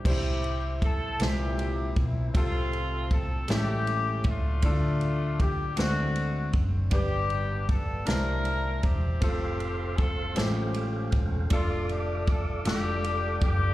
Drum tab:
CC |x-----|------|------|------|
RD |-xxxxx|xxxxxx|xxxxxx|xxxxxx|
SD |---o--|---o--|---o--|---o--|
BD |o-o--o|o-o--o|o-o--o|o-o--o|

CC |------|------|
RD |xxxxxx|xxxxxx|
SD |---o--|---o--|
BD |o-o--o|o-o--o|